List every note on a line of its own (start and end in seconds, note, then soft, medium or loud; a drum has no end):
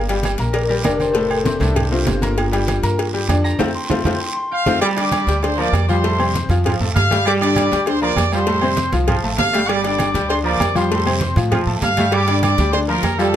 0.00 0.34 G1 loud
0.00 0.53 D5 loud
0.00 1.30 F5 loud
0.09 0.35 G3 medium
0.09 0.35 G4 medium
0.09 0.35 G5 medium
0.09 cowbell medium
0.09 high conga soft
0.09 low agogo medium
0.23 cowbell medium
0.23 high conga loud
0.23 low timbale medium
0.23 low agogo loud
0.23 short guiro medium
0.38 0.82 A#1 loud
0.38 0.65 A#3 medium
0.38 0.65 A#4 medium
0.38 0.65 A#5 medium
0.38 cowbell medium
0.38 short guiro medium
0.53 0.68 A#4 loud
0.53 0.69 D5 loud
0.53 cowbell loud
0.53 high conga soft
0.53 low agogo medium
0.53 long guiro medium
0.68 0.82 G3 medium
0.68 0.83 G4 medium
0.68 0.84 A#4 medium
0.68 0.85 D5 medium
0.68 0.83 G5 medium
0.68 high conga soft
0.84 1.56 F1 medium
0.84 1.10 D3 medium
0.84 1.10 D4 medium
0.84 1.19 A#4 medium
0.84 2.70 D5 medium
0.84 1.10 D5 medium
0.84 cowbell medium
0.84 high conga medium
0.84 low timbale loud
0.84 low agogo loud
0.84 short guiro medium
1.00 1.45 G4 loud
1.00 1.13 C5 loud
1.00 high conga medium
1.00 low agogo medium
1.00 short guiro medium
1.13 1.41 A2 medium
1.13 1.41 A3 medium
1.13 1.29 A4 medium
1.13 1.41 A4 medium
1.13 1.30 C5 loud
1.13 cowbell loud
1.13 high conga soft
1.13 long guiro medium
1.29 3.50 A4 medium
1.29 3.28 C5 medium
1.29 high conga soft
1.29 low agogo loud
1.44 1.59 C3 medium
1.44 1.59 C4 medium
1.44 1.60 D4 medium
1.44 1.60 G4 medium
1.44 1.59 C5 medium
1.44 cowbell medium
1.44 high conga loud
1.44 low timbale medium
1.44 short guiro medium
1.60 2.03 C2 loud
1.60 1.86 A2 medium
1.60 1.86 A3 medium
1.60 1.75 D4 medium
1.60 1.75 G4 medium
1.60 1.86 A4 medium
1.60 high conga loud
1.60 low agogo medium
1.60 short guiro medium
1.75 4.55 D4 medium
1.75 4.11 G4 medium
1.75 cowbell loud
1.75 high conga soft
1.75 low conga medium
1.75 low agogo loud
1.75 long guiro medium
1.91 2.17 C3 medium
1.91 2.17 C4 medium
1.91 4.44 F4 loud
1.91 2.17 C5 medium
2.06 2.78 G1 medium
2.06 cowbell medium
2.06 high conga medium
2.06 low timbale loud
2.06 low agogo medium
2.06 short guiro medium
2.22 2.47 A#3 medium
2.22 2.47 A#4 medium
2.22 2.48 A#5 medium
2.22 cowbell medium
2.22 high conga medium
2.22 low agogo medium
2.22 short guiro medium
2.38 cowbell loud
2.38 low agogo loud
2.38 long guiro medium
2.52 2.78 G3 medium
2.52 2.78 G4 medium
2.52 2.78 G5 medium
2.52 cowbell medium
2.52 high conga soft
2.52 low agogo loud
2.68 cowbell medium
2.68 high conga loud
2.68 low timbale medium
2.68 low agogo loud
2.68 short guiro medium
2.83 3.26 G2 medium
2.83 3.08 A#3 medium
2.83 3.09 A#4 medium
2.83 3.09 A#5 medium
2.83 cowbell medium
2.83 short guiro medium
2.99 cowbell loud
2.99 high conga soft
2.99 low agogo medium
2.99 long guiro medium
3.14 3.26 G3 medium
3.14 3.27 G4 medium
3.14 3.27 G5 medium
3.14 high conga soft
3.29 3.57 F2 loud
3.29 3.54 D3 medium
3.29 3.54 D4 medium
3.29 3.54 D5 medium
3.29 cowbell medium
3.29 high conga medium
3.29 low timbale medium
3.29 low agogo loud
3.29 short guiro medium
3.44 4.84 A#5 loud
3.44 low agogo medium
3.44 short guiro medium
3.59 3.71 F2 medium
3.59 3.69 A3 loud
3.59 3.69 C4 loud
3.59 3.69 F4 loud
3.59 4.05 G5 medium
3.59 cowbell loud
3.59 high conga loud
3.59 high timbale loud
3.59 long guiro loud
3.75 3.89 C6 medium
3.89 4.01 F2 loud
3.89 4.00 A3 loud
3.89 4.00 C4 medium
3.89 4.00 F4 loud
3.89 4.20 C6 loud
3.89 cowbell loud
3.89 high conga loud
3.89 high timbale loud
3.89 long guiro loud
4.05 4.16 F2 loud
4.05 4.16 A3 loud
4.05 4.16 C4 medium
4.05 4.16 F4 loud
4.05 4.51 G5 loud
4.05 cowbell loud
4.05 high conga loud
4.05 high timbale loud
4.05 long guiro medium
4.20 4.36 C6 loud
4.36 5.67 C6 loud
4.51 4.81 F5 loud
4.51 4.67 G5 medium
4.66 4.78 F2 loud
4.66 4.77 A3 loud
4.66 4.77 C4 loud
4.66 4.77 F4 loud
4.66 6.23 G5 loud
4.66 cowbell loud
4.66 high conga loud
4.66 high timbale medium
4.66 long guiro loud
4.81 5.27 G3 loud
4.81 4.89 D5 loud
4.81 4.88 D6 medium
4.81 cowbell loud
4.81 high conga soft
4.81 low agogo loud
4.81 long guiro medium
4.97 5.22 D3 medium
4.97 5.22 D4 medium
4.97 5.22 D5 medium
4.97 5.40 D5 loud
4.97 5.40 D6 medium
4.97 cowbell medium
4.97 high conga soft
4.97 low agogo medium
5.12 cowbell medium
5.12 high conga loud
5.12 low timbale medium
5.12 low agogo loud
5.12 short guiro medium
5.27 5.70 D2 loud
5.27 5.40 G3 medium
5.27 5.41 G4 medium
5.27 5.41 G5 medium
5.27 cowbell medium
5.27 short guiro medium
5.43 5.55 D3 medium
5.43 5.55 D4 medium
5.43 5.57 C5 loud
5.43 5.56 D5 medium
5.43 5.58 C6 medium
5.43 cowbell loud
5.43 high conga soft
5.43 low agogo medium
5.43 long guiro medium
5.57 5.74 F3 medium
5.57 5.82 A#3 medium
5.57 5.83 A#4 medium
5.57 5.89 D5 loud
5.57 5.83 A#5 medium
5.57 5.90 D6 medium
5.57 high conga soft
5.73 6.44 F2 loud
5.73 cowbell medium
5.73 high conga medium
5.73 low timbale medium
5.73 low agogo loud
5.73 short guiro medium
5.89 6.01 F3 loud
5.89 6.35 G3 medium
5.89 6.02 F4 medium
5.89 6.46 C5 medium
5.89 6.01 F5 medium
5.89 6.46 C6 medium
5.89 high conga medium
5.89 low agogo medium
5.89 short guiro medium
6.04 6.16 A2 medium
6.04 6.16 A3 medium
6.04 6.17 A4 loud
6.04 cowbell loud
6.04 high conga soft
6.04 long guiro medium
6.19 6.44 C3 medium
6.19 6.44 C4 medium
6.19 6.44 C5 medium
6.19 high conga soft
6.19 low agogo loud
6.35 cowbell medium
6.35 high conga loud
6.35 low timbale medium
6.35 short guiro medium
6.49 6.77 F2 loud
6.49 6.75 F3 medium
6.49 6.75 F4 medium
6.49 6.75 F5 medium
6.49 high conga loud
6.49 low agogo medium
6.49 short guiro medium
6.64 6.89 F3 medium
6.64 cowbell loud
6.64 high conga soft
6.64 low conga medium
6.64 low agogo loud
6.64 long guiro medium
6.80 6.94 F2 medium
6.80 7.05 A3 medium
6.80 7.06 A4 medium
6.80 7.06 A5 medium
6.80 high conga soft
6.80 low conga medium
6.95 7.66 G2 medium
6.95 7.24 F5 loud
6.95 cowbell medium
6.95 high conga medium
6.95 low timbale medium
6.95 low agogo medium
6.95 short guiro medium
7.10 7.36 G3 loud
7.10 7.18 A3 medium
7.10 7.36 G4 loud
7.10 7.36 G5 medium
7.10 cowbell medium
7.10 high conga medium
7.10 low agogo medium
7.10 short guiro medium
7.26 7.71 G3 loud
7.26 7.33 D5 loud
7.26 7.33 D6 medium
7.26 cowbell loud
7.26 high conga soft
7.26 low agogo loud
7.26 long guiro medium
7.41 7.66 D3 medium
7.41 7.66 D4 medium
7.41 7.67 D5 medium
7.41 7.84 D5 loud
7.41 7.85 D6 medium
7.41 cowbell medium
7.41 high conga soft
7.41 low agogo loud
7.56 cowbell medium
7.56 high conga loud
7.56 low timbale medium
7.56 low agogo loud
7.56 short guiro medium
7.72 8.14 D2 loud
7.72 7.84 G3 medium
7.72 7.84 G4 medium
7.72 7.85 G5 medium
7.72 cowbell medium
7.72 short guiro medium
7.86 7.99 D3 medium
7.86 8.00 D4 medium
7.86 8.03 C5 loud
7.86 8.00 D5 medium
7.86 8.03 C6 medium
7.86 cowbell loud
7.86 high conga soft
7.86 low agogo medium
7.86 long guiro medium
8.01 8.17 F3 medium
8.01 8.27 A#3 medium
8.01 8.27 A#4 medium
8.01 8.31 D5 loud
8.01 8.27 A#5 medium
8.01 8.31 D6 medium
8.01 high conga soft
8.16 8.87 F2 medium
8.16 cowbell medium
8.16 high conga loud
8.16 low timbale medium
8.16 low agogo loud
8.16 short guiro medium
8.32 8.45 F3 medium
8.32 8.77 G3 medium
8.32 8.45 F4 loud
8.32 8.94 C5 medium
8.32 8.46 F5 medium
8.32 8.94 C6 medium
8.32 low agogo medium
8.32 short guiro medium
8.47 8.60 A2 loud
8.47 8.60 A3 medium
8.47 8.60 A4 loud
8.47 cowbell loud
8.47 high conga soft
8.47 long guiro medium
8.62 8.87 C3 medium
8.62 8.88 C4 medium
8.62 8.88 C5 medium
8.62 high conga soft
8.62 low agogo loud
8.77 cowbell medium
8.77 high conga loud
8.77 low timbale medium
8.77 short guiro medium
8.92 9.21 C2 medium
8.92 9.18 F3 medium
8.92 9.18 F4 medium
8.92 9.18 F5 medium
8.92 high conga loud
8.92 low agogo medium
8.92 short guiro medium
9.08 9.32 F3 medium
9.08 cowbell loud
9.08 high conga soft
9.08 low conga medium
9.08 low agogo medium
9.08 long guiro medium
9.23 9.38 A1 medium
9.23 9.49 A3 medium
9.23 9.49 A4 medium
9.23 9.49 A5 medium
9.23 high conga soft
9.38 10.09 G1 medium
9.38 9.67 F5 loud
9.38 cowbell medium
9.38 high conga medium
9.38 low timbale loud
9.38 low agogo medium
9.38 short guiro medium
9.53 9.79 G3 medium
9.53 9.61 A3 medium
9.53 9.79 G4 medium
9.53 9.79 G5 medium
9.53 cowbell medium
9.53 low agogo medium
9.53 short guiro medium
9.68 10.13 G3 medium
9.68 9.84 D5 loud
9.68 9.84 D6 medium
9.68 cowbell loud
9.68 high conga soft
9.68 low agogo loud
9.68 long guiro medium
9.84 10.09 D3 medium
9.84 10.10 D4 medium
9.84 10.27 D5 medium
9.84 10.10 D5 medium
9.84 10.28 D6 medium
9.84 cowbell medium
9.84 high conga soft
9.84 low agogo medium
9.99 cowbell medium
9.99 high conga loud
9.99 low timbale medium
9.99 low agogo loud
9.99 short guiro medium
10.14 10.57 D2 loud
10.14 10.27 G3 medium
10.14 10.27 G4 medium
10.14 10.28 G5 medium
10.14 cowbell medium
10.14 short guiro medium
10.29 10.42 D3 medium
10.29 10.43 D4 medium
10.29 10.36 C5 medium
10.29 10.43 D5 medium
10.29 10.37 C6 medium
10.29 cowbell loud
10.29 high conga soft
10.29 low agogo medium
10.29 long guiro medium
10.43 10.60 F3 medium
10.43 10.70 A#3 medium
10.43 10.70 A#4 medium
10.43 10.73 D5 medium
10.43 10.71 A#5 medium
10.43 10.73 D6 medium
10.43 high conga soft
10.60 11.31 F2 loud
10.60 cowbell medium
10.60 high conga medium
10.60 low timbale medium
10.60 low agogo loud
10.60 short guiro medium
10.75 10.88 F3 loud
10.75 11.21 G3 medium
10.75 10.88 F4 medium
10.75 11.37 C5 medium
10.75 10.88 F5 loud
10.75 11.37 C6 medium
10.75 high conga medium
10.75 low agogo medium
10.75 short guiro medium
10.91 11.04 A2 medium
10.91 11.04 A3 medium
10.91 11.04 A4 loud
10.91 cowbell loud
10.91 high conga soft
10.91 long guiro medium
11.05 11.31 C3 medium
11.05 11.31 C4 medium
11.05 11.31 C5 medium
11.05 high conga soft
11.05 low agogo loud
11.21 cowbell medium
11.21 high conga loud
11.21 low timbale medium
11.21 short guiro medium
11.36 11.65 A2 loud
11.36 11.61 F3 medium
11.36 11.62 F4 medium
11.36 11.62 F5 medium
11.36 high conga loud
11.36 low agogo medium
11.36 short guiro medium
11.52 11.76 F3 loud
11.52 cowbell loud
11.52 high conga soft
11.52 low conga medium
11.52 low agogo loud
11.52 long guiro medium
11.66 11.81 A2 medium
11.66 11.92 A3 medium
11.66 11.92 A4 medium
11.66 11.92 A5 medium
11.66 high conga soft
11.81 12.52 G2 loud
11.81 12.11 F5 loud
11.81 cowbell medium
11.81 high conga medium
11.81 low timbale medium
11.81 low agogo medium
11.81 short guiro medium
11.97 12.23 G3 loud
11.97 12.05 A3 medium
11.97 12.23 G4 loud
11.97 12.23 G5 loud
11.97 cowbell medium
11.97 high conga medium
11.97 low agogo medium
11.97 short guiro medium
12.11 12.57 G3 loud
12.11 12.42 D5 loud
12.11 12.42 D6 medium
12.11 cowbell loud
12.11 high conga soft
12.11 low agogo loud
12.11 long guiro medium
12.28 12.53 D3 medium
12.28 12.53 D4 medium
12.28 12.53 D5 medium
12.28 cowbell medium
12.28 high conga soft
12.28 low agogo medium
12.43 12.71 D5 medium
12.43 12.72 D6 medium
12.43 cowbell medium
12.43 high conga loud
12.43 low timbale medium
12.43 low agogo loud
12.43 short guiro medium
12.58 13.01 D2 loud
12.58 12.71 G3 medium
12.58 12.71 G4 medium
12.58 12.72 G5 medium
12.58 cowbell medium
12.58 short guiro medium
12.73 12.86 D3 medium
12.73 12.86 D4 medium
12.73 12.80 C5 loud
12.73 12.86 D5 medium
12.73 12.80 C6 medium
12.73 cowbell loud
12.73 high conga soft
12.73 low agogo medium
12.73 long guiro medium
12.88 13.04 F3 medium
12.88 13.13 A#3 medium
12.88 13.13 A#4 medium
12.88 13.17 A#4 loud
12.88 13.14 A#5 medium
12.88 13.17 A#5 medium
12.88 high conga soft
13.03 13.36 F2 medium
13.03 cowbell medium
13.03 high conga medium
13.03 low timbale medium
13.03 low agogo loud
13.03 short guiro medium
13.19 13.31 F3 medium
13.19 13.36 G3 medium
13.19 13.31 F4 medium
13.19 13.36 A4 loud
13.19 13.31 F5 medium
13.19 13.36 A5 medium
13.19 low agogo medium
13.19 short guiro medium